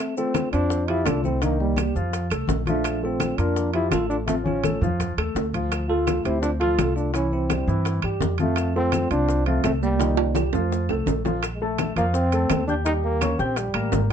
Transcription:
Already playing: trombone A3, tine electric piano C4
0.17 grand piano A3 A4, trombone C4, tine electric piano F4, high conga, maracas
0.34 high bongo, high conga, high timbale, low timbale, claves, maracas
0.53 upright bass F2, grand piano C4 C5, trombone D4, tine electric piano F4, high conga, high timbale, maracas
0.70 high bongo, high conga, maracas
0.88 grand piano F3 F4, trombone E4, tine electric piano G4, high conga, high timbale
1.05 upright bass C2, grand piano A3 A4, trombone D4, tine electric piano F4, high bongo, low bongo, high conga, high timbale, low timbale, claves, maracas
1.24 trombone C4, tine electric piano E4, high conga, maracas
1.42 grand piano D#3 D#4, trombone A#3, tine electric piano D4, high bongo, high conga, high timbale, maracas
1.59 trombone G3, tine electric piano A#3, high bongo, high conga
1.76 grand piano G3 G4, high bongo, high conga, high timbale, low timbale, claves, maracas
1.94 upright bass F2, grand piano F3 F4, high bongo, high conga, maracas
2.12 high bongo, high conga, high timbale, maracas
2.29 upright bass C2, grand piano A3 A4, high bongo, high conga, high timbale, claves, maracas
2.48 upright bass A#1, high bongo, low bongo, high conga, low timbale, maracas
2.66 grand piano F3 F4, trombone A3, high conga, high timbale, maracas
2.70 tine electric piano D4
2.83 high bongo, high conga, high timbale, claves, maracas
3.01 grand piano A3 A4, trombone C4, tine electric piano F4, high conga
3.20 high bongo, high conga, high timbale, low timbale, claves, maracas
3.38 upright bass F2, grand piano A#3 A#4, trombone D4, tine electric piano F4, high conga, high timbale, maracas
3.56 high bongo, high conga, maracas
3.73 grand piano F3 F4, trombone E4, tine electric piano G4, high conga, high timbale
3.91 upright bass A1, grand piano A3 A4, trombone F4, tine electric piano A4, high bongo, low bongo, high conga, high timbale, low timbale, claves, maracas
4.09 trombone D4, tine electric piano F4, maracas
4.27 grand piano F3 F4, trombone A3, tine electric piano C4, high bongo, high conga, high timbale, maracas
4.44 trombone C#4, tine electric piano F4, high bongo, high conga
4.64 grand piano A3 A4, high bongo, high conga, high timbale, low timbale, claves, maracas
4.81 upright bass F2, grand piano F3 F4, high bongo, low conga, maracas
5.00 high bongo, low conga, high timbale, maracas
5.17 upright bass D#2, grand piano A3 A4, high bongo, high timbale, claves
5.35 upright bass D2, high bongo, low bongo, low timbale, maracas
5.53 grand piano F3 F4, low conga, high timbale, maracas
5.72 high bongo, high conga, high timbale, claves, maracas
5.89 grand piano A3 A4, trombone F4, tine electric piano A4, high conga
6.07 high bongo, high conga, high timbale, low timbale, claves, maracas
6.24 upright bass D2, grand piano C4 C5, trombone E4, tine electric piano G4, high conga, high timbale, maracas
6.42 trombone D4, tine electric piano F4, high bongo, high conga, maracas
6.60 grand piano F3 F4, trombone F4, tine electric piano A4, high conga, high timbale
6.78 upright bass C2, grand piano A3 A4, high bongo, low bongo, high conga, high timbale, low timbale, claves, maracas
6.96 trombone D4, tine electric piano F4, maracas
7.14 grand piano E3 E4, trombone C#4, tine electric piano E4, high bongo, high conga, high timbale, maracas
7.32 trombone C4, tine electric piano E4, high bongo, high conga
7.50 grand piano G3 G4, high bongo, high conga, high timbale, low timbale, claves, maracas
7.67 upright bass G2, grand piano E3 E4, high bongo, high conga, maracas
7.85 high bongo, high conga, high timbale, maracas
8.02 upright bass G2, grand piano G3 G4, high bongo, high conga, high timbale, claves
8.20 upright bass F2, high bongo, low bongo, high conga, low timbale, maracas
8.38 grand piano F3 F4, trombone A3, tine electric piano C4, high conga, high timbale, maracas
8.56 high bongo, high conga, high timbale, claves, maracas
8.75 grand piano A3 A4, trombone C4, tine electric piano F4, high conga
8.92 high bongo, high conga, high timbale, low timbale, claves, maracas
9.10 upright bass C2, grand piano C4 C5, trombone D4, tine electric piano F4, high timbale, maracas
9.28 high bongo, high conga, maracas
9.46 grand piano F3 F4, trombone A3, tine electric piano C4, high conga, high timbale
9.64 upright bass C2, trombone A3, grand piano A3 A4, tine electric piano C4, high bongo, low bongo, high conga, high timbale, low timbale, claves, maracas
9.83 trombone G3, tine electric piano A#3, maracas
9.99 grand piano D#3 D#4, high bongo, high conga, high timbale, maracas
10.17 high bongo, high conga, high timbale
10.35 grand piano G3 G4, high bongo, high conga, high timbale, claves, maracas
10.53 upright bass F2, trombone F3, grand piano F3 F4, tine electric piano A3, high bongo, low timbale, maracas
10.71 high bongo, high conga, maracas
10.89 upright bass C2, grand piano A3 A4, high bongo, high conga, low timbale, claves
11.06 upright bass A#1, low bongo, high conga, low timbale, maracas
11.25 grand piano F3 F4, low bongo, high conga, low timbale, maracas
11.43 high bongo, high conga, high timbale, claves, maracas
11.55 trombone G#3
11.61 trombone A3, grand piano A3 A4 A5, high conga
11.78 high bongo, high conga, high timbale, low timbale, claves, maracas
11.96 upright bass F2, grand piano F3 F4 F5, trombone A#3, high conga, high timbale, maracas
12.14 trombone C4, high bongo, high conga, maracas
12.32 grand piano A3 A4 A5, high conga, high timbale, maracas
12.50 upright bass D#2, high bongo, low bongo, high conga, high timbale, low timbale, claves, maracas
12.67 trombone D4, grand piano G4 G5 G6, high conga, maracas
12.85 grand piano G3 G4 G5, trombone D#4, high bongo, high conga, high timbale, maracas
13.04 trombone A#3, high bongo, high conga
13.21 grand piano C#4 C#5 C#6, high bongo, high conga, high timbale, low timbale, claves, maracas
13.39 upright bass A#1, trombone C4, grand piano G4 G5 G6, high bongo, high conga, maracas
13.56 trombone G3, high bongo, high conga, high timbale, maracas
13.74 upright bass A1, grand piano A#3 A#4 A#5, high bongo, high conga, high timbale, claves
13.92 upright bass G#1, high bongo, low bongo, high conga, low timbale, maracas

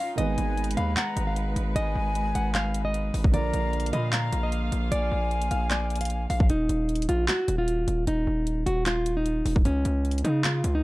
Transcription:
Already playing: string section C#4 D#4 F4, nylon-string guitar F5
0.00 flute F5
0.16 808-style bass G#1, grand piano D#3 G#3 B3 G#4, string section G#3 B4, nylon-string guitar D#5, flute G#5, closed hi-hat
0.20 grand piano B4
0.38 808-style bass G#1, closed hi-hat
0.57 closed hi-hat
0.64 closed hi-hat
0.71 closed hi-hat
0.77 808-style bass D#2, nylon-string guitar F5, flute B5, closed hi-hat
0.97 nylon-string guitar F#5, flute A#5, clap, closed hi-hat
1.17 808-style bass G#1, closed hi-hat
1.27 nylon-string guitar F5
1.36 closed hi-hat
1.56 808-style bass G#1, closed hi-hat
1.76 808-style bass G#1, nylon-string guitar D#5, flute G#5, closed hi-hat
1.95 808-style bass G#1
2.15 closed hi-hat
2.35 808-style bass G#1, nylon-string guitar F#5, closed hi-hat
2.55 nylon-string guitar F5, clap, closed hi-hat
2.74 closed hi-hat
2.85 nylon-string guitar D#5
2.94 closed hi-hat
3.14 808-style bass G#1, open hi-hat
3.24 kick
3.31 808-style bass A#1, grand piano D3 F3 A#3 F4, string section A#3 F4 F5, nylon-string guitar D5, flute A#5, closed hi-hat
3.36 grand piano A#4
3.53 808-style bass A#1, closed hi-hat
3.73 closed hi-hat
3.80 closed hi-hat
3.86 closed hi-hat
3.93 808-style bass A#2, nylon-string guitar D#5, flute B5, closed hi-hat
4.12 nylon-string guitar F5, flute A#5, clap, closed hi-hat
4.33 808-style bass A#1, closed hi-hat
4.43 nylon-string guitar D#5
4.52 closed hi-hat
4.72 808-style bass A#1, closed hi-hat
4.92 808-style bass A#1, nylon-string guitar D5, flute G#5, closed hi-hat
5.11 808-style bass A#1
5.31 closed hi-hat
5.42 closed hi-hat
5.51 808-style bass A#1, nylon-string guitar F5, closed hi-hat
5.71 nylon-string guitar D5, clap, closed hi-hat
5.90 closed hi-hat
5.96 closed hi-hat
6.01 nylon-string guitar F5, closed hi-hat
6.05 closed hi-hat
6.10 closed hi-hat
6.30 808-style bass A#1, flute F5, nylon-string guitar F5, open hi-hat
6.40 kick
6.50 808-style bass D#1, nylon-string guitar D#4, closed hi-hat
6.69 808-style bass D#1, closed hi-hat
6.89 closed hi-hat
6.95 closed hi-hat
7.02 closed hi-hat
7.09 808-style bass A#1, nylon-string guitar F4, closed hi-hat
7.28 nylon-string guitar F#4, clap, closed hi-hat
7.48 808-style bass D#1, closed hi-hat
7.58 nylon-string guitar F4
7.68 closed hi-hat
7.88 808-style bass D#1, closed hi-hat
8.07 808-style bass D#1, nylon-string guitar D#4, closed hi-hat
8.27 808-style bass D#1
8.47 closed hi-hat
8.66 808-style bass D#1, nylon-string guitar F#4, closed hi-hat
8.86 nylon-string guitar F4, clap, closed hi-hat
9.06 closed hi-hat
9.17 nylon-string guitar D#4
9.26 closed hi-hat
9.45 808-style bass D#1, open hi-hat
9.56 kick
9.65 808-style bass C#2, nylon-string guitar C#4, closed hi-hat
9.85 808-style bass C#2, closed hi-hat
10.05 closed hi-hat
10.11 closed hi-hat
10.18 closed hi-hat
10.24 808-style bass C#3, nylon-string guitar D#4, closed hi-hat
10.44 nylon-string guitar F4, clap, closed hi-hat
10.64 808-style bass C#2, closed hi-hat
10.75 nylon-string guitar D#4

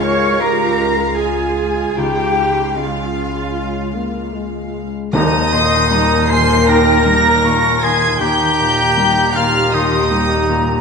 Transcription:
Already playing: double bass section C#2, felt piano C#2 G#2, french horn section G#3 F4, viola section G#3 F4, violin section F5
0.02 clarinet A#4, cello section C#5, flute C#6, violin section C#6
0.41 clarinet G4, cello section A#4, flute A#5, violin section A#5
1.18 clarinet F4, cello section G#4, violin section G#5, flute G#5
1.95 felt piano C#2, double bass section C#2, french horn section G#3 F4, viola section G#3 F4, clarinet D#4, cello section G4, violin section F5 G5, flute G5
2.76 french horn section C#3, felt piano G#3, clarinet C#4, cello section F4, violin section F5, flute F5
3.94 french horn section A#3
4.34 french horn section G#3
5.12 felt piano D#2, double bass section D#2, timpani D#3, cello section D#3, french horn section A#3 A#4, viola section A#3 A#4, oboe D#4, violin section D#5 D#6, flute A#5
5.52 felt piano A#2, flute C6
5.91 felt piano G3, flute A#5
6.30 felt piano A#2, oboe C5, flute G#5, violin section C6 C7
6.67 felt piano D#2, oboe A#4, flute G5, violin section A#5 A#6
7.06 felt piano G3, flute A#5
7.44 felt piano A#2, flute C#6
7.82 felt piano A#3, oboe G#4, violin section G#5 G#6, flute C6
8.19 felt piano D#2, double bass section D#2, cello section D#3, french horn section A#3 G4, viola section A#3 G4, oboe G4, violin section G5 G6, flute A#5
8.60 felt piano A#2
8.97 felt piano G3
9.33 felt piano A#2, oboe F4, violin section F5 F6
9.71 felt piano D#2, oboe D#4, violin section D#5 D#6, flute C6
10.11 felt piano G3, flute A#5
10.49 felt piano A#2

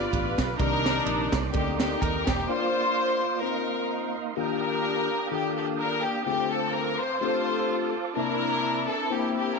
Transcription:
Already playing: tine electric piano G2 B3 D4 F4 G4 B4, string section F4 B4 D5, tonewheel organ G4 F5 B5 D6
0.13 fingered electric bass A1, kick, ride
0.38 fingered electric bass B1, kick, snare, ride
0.59 fingered electric bass C2, tine electric piano C3 D#3 C4 G4 A#4 D5, tonewheel organ A#3 D5 C6, string section D4 D#4 A#4, kick, ride
0.86 snare, ride
1.06 fingered electric bass A#1, ride
1.32 fingered electric bass C2, kick, snare, ride
1.53 fingered electric bass D2, string section A#3 D#4 G4, tine electric piano C4 D#4 G4 A4 D5, kick, ride
1.80 string section G4, snare, ride
2.02 fingered electric bass D#2, string section A#4, kick, ride
2.27 fingered electric bass E1, string section G4, kick, snare, ride
2.47 tine electric piano A#3 D4 F4 A#4 D5, tonewheel organ F4 D5 F5, string section F4 C5
3.42 tine electric piano C4 D#4 F4 A#4 C5, string section D#4 A#4, tonewheel organ D#5 C6
4.37 tine electric piano D#3 A#3 D4 F4 G4 A#4, tonewheel organ D4 F5 G5 D#6, string section D4 G4 A#4
5.31 tine electric piano D#3 D4 F4 G4 A4, string section A#3 D4 G4
5.58 string section G4
5.79 string section A#4
6.05 string section G4
6.26 tine electric piano D3 A3 C4 D4 F4 G#4, string section C4 G4, tonewheel organ C5 A5 D6
6.32 tine electric piano A4
6.52 string section A4
6.74 string section A#4
7.00 string section C5
7.20 tine electric piano A3 C4 D4 F4 G4, string section F4 A4 C5
8.16 tine electric piano C3 A#3 C4 D4 E4 A5, tonewheel organ C4 A#4 E5, string section D4 E4 A#4
8.91 string section A4
9.10 tine electric piano A#3 C4 D4 E4 C5, string section A#3 E4 G4
9.38 string section G4

